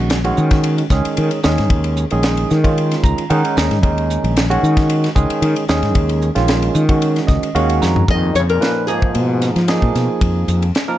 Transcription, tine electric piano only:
Already playing: D#3 G#3 C#4 F#4
0.24 D#3 G#3 C#4 F#4
0.91 D#3 G#3 C#4 G#4
1.44 D#3 G#3 C#4 G#4
2.11 D#3 G#3 C#4 G#4
2.64 D#3 G#3 C#4 F4
3.04 A#5
3.30 D#3 G#3 C#4 D#4 F#5
3.58 D#5
3.83 D#3 G#3 C#4 D#4
4.50 D#3 G#3 C#4 F#4
5.15 D#3 G#3 C#4 G#4
5.69 D#3 G#3 C#4 G#4
6.35 D#3 G#3 C#4 F4
6.89 D#3 G#3 C#4 F#4
7.27 D#5
7.54 D#3 G#3 C#4 F#4 F5
7.81 A#5
8.08 F3 A#3 D#4 G#4
8.61 F3 A#3 D#4 B4
8.88 F3 A#3 D#4 G#4
9.68 F3 A#3 D#4 G#4
10.88 F3 A#3 D#4 A#4

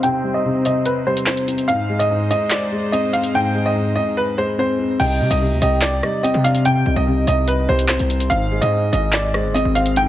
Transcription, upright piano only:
0.03 G5
0.34 D#5
0.66 D#5
0.86 B4
1.07 C5
1.27 C5
1.68 F5
1.99 D#5
2.31 D#5
2.51 D5
2.92 D#5
3.13 F5
3.35 G5
3.66 D#5
3.96 D#5
4.17 B4
4.38 C5
4.59 C5
5.00 G5
5.31 D#5
5.62 D#5
5.82 D5
6.23 D#5
6.44 F5
6.65 G5
6.96 D#5
7.28 D#5
7.48 B4
7.69 C5
7.89 C5
8.30 F5
8.61 D#5
8.93 D#5
9.14 D5
9.54 D#5
9.75 F5
9.97 G5

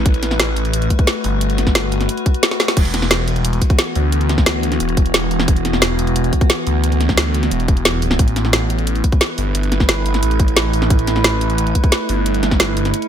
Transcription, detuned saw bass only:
0.06 A1
1.24 G1
2.77 E1
3.95 D2
4.80 E1
5.48 E1
6.67 D2
7.51 E1
7.68 E1
8.19 A1
9.38 G1
10.23 A1
10.90 A1
12.09 G1

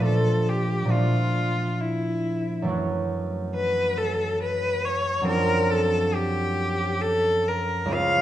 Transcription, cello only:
0.05 A4
0.49 G4
0.92 F4
1.81 E4
3.56 B4
3.98 A4
4.43 B4
4.85 C#5
5.27 A#4
5.70 A4
6.14 G4
7.01 A4
7.48 A#4
7.93 F5

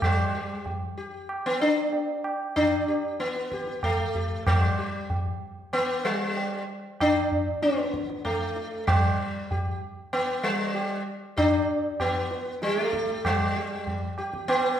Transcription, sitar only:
0.04 G3
0.35 G4
0.98 G4
1.46 B3
1.61 D4
2.56 D4
2.88 G4
3.20 B3
3.53 G4
3.84 A3
4.15 G4
4.47 G3
4.78 G4
5.73 B3
6.05 G3
7.01 D4
7.63 B3
8.25 A3
8.87 G3
9.52 G4
10.13 B3
10.43 G3
10.74 G4
11.37 D4 G4
12.00 B3 G4
12.62 G3 G4
12.82 A3
12.94 G4
13.26 G3
13.56 G4
14.18 G4
14.48 B3

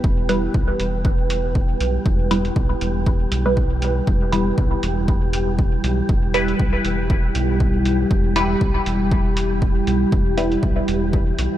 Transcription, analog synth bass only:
0.04 E1
0.54 B1
0.80 E1
1.80 B1
2.06 E1
2.56 B1
2.81 E1
3.32 B1
4.07 E1
4.58 B1
4.83 E1
5.84 B1
6.09 E1
6.60 B1
6.85 E1
7.35 B1
8.11 E1
8.61 B1
8.86 E1
9.87 B1
10.12 E1
10.63 B1
10.88 E1
11.38 B1

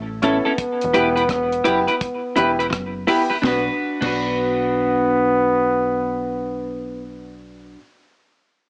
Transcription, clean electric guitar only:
0.23 C#4 E4 A4
0.45 C#4 E4 A4
0.94 E4 G4 B4
1.16 E4 G4 B4
1.64 E4 G4 B4
1.87 E4 G4 B4
2.36 E4 G4 B4
2.59 E4 G4 B4
3.07 E4 G4 B4
3.30 E4 G4 B4
3.42 D4 F#4
3.47 B4
4.01 D4 F#4
4.06 B4

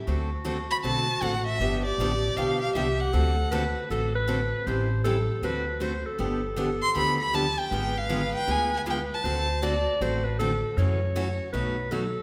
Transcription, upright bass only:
0.07 D2
0.84 B1
1.21 A1
1.59 G1
1.98 A1
2.36 B1
2.75 C2
3.14 D2
3.90 A1
4.67 A1
5.42 D2
6.19 G1
6.95 D2
7.71 G#1
8.47 D2
9.24 D2
10.01 A1
10.77 F#2
11.53 B1

